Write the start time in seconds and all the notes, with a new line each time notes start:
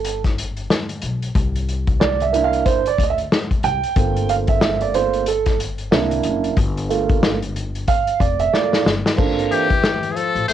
Already playing: G1 A4
0.05 closed hi-hat
0.24 kick, snare, closed hi-hat
0.39 closed hi-hat
0.57 closed hi-hat
0.71 snare
0.89 closed hi-hat
1.02 B1, closed hi-hat
1.23 closed hi-hat
1.35 C2, kick, closed hi-hat
1.56 closed hi-hat
1.69 closed hi-hat
1.87 kick, closed hi-hat
2.00 D5, snare
2.20 E5, closed hi-hat
2.33 A#3 D4 E4, closed hi-hat
2.44 F5
2.53 closed hi-hat
2.66 C5, kick, closed hi-hat
2.86 D5, closed hi-hat
2.98 D2, kick, closed hi-hat
3.03 D#5
3.10 E5
3.18 closed hi-hat
3.32 snare
3.51 kick, closed hi-hat
3.63 C2 G5, closed hi-hat
3.83 closed hi-hat
3.96 G1 A3 A#3 C4 F4, kick, closed hi-hat
4.17 closed hi-hat
4.29 F5, closed hi-hat
4.48 E5, kick, closed hi-hat
4.62 snare
4.81 D5, closed hi-hat
4.94 A3 A#3 C4 F4 C5, closed hi-hat
5.14 closed hi-hat
5.26 A4, closed hi-hat
5.46 kick, snare, closed hi-hat
5.60 closed hi-hat
5.78 closed hi-hat
5.91 C2 A#3 D4 E4, snare
6.11 closed hi-hat
6.24 F#1, closed hi-hat
6.44 closed hi-hat
6.57 G1, kick, closed hi-hat
6.78 closed hi-hat
6.89 A3 A#3 F4, closed hi-hat
7.09 kick, closed hi-hat
7.23 snare
7.42 closed hi-hat
7.56 closed hi-hat
7.75 closed hi-hat
7.87 F5, kick, closed hi-hat
8.07 closed hi-hat
8.20 F1 D5, kick, closed hi-hat
8.39 E5, closed hi-hat
8.53 A3 A#3 F4 D5, snare
8.73 snare
8.85 G1, snare
9.06 snare
9.17 G1 A#3 C4 D4 F4 A4, kick, crash
9.39 closed hi-hat
9.51 E3 G4, closed hi-hat
9.70 kick, closed hi-hat
9.84 snare
10.03 closed hi-hat
10.11 E3 G#4
10.16 F3 A4, closed hi-hat
10.35 A1, closed hi-hat
10.48 A#1 A3 C5, closed hi-hat